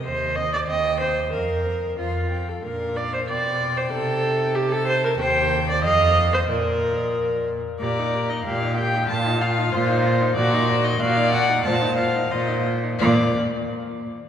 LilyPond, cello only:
\new Staff \with { instrumentName = "Cello" } { \clef bass \time 2/4 \key bes \major \tempo 4 = 93 ees,4 ees,4 | f,4 f,4 | bes,4 b,4 | c2 |
ees,4 f,4 | bes,4. r8 | bes,4 bes,4 | bes,4 bes,4 |
bes,4 bes,4 | bes,4 bes,4 | bes,8 r4. | }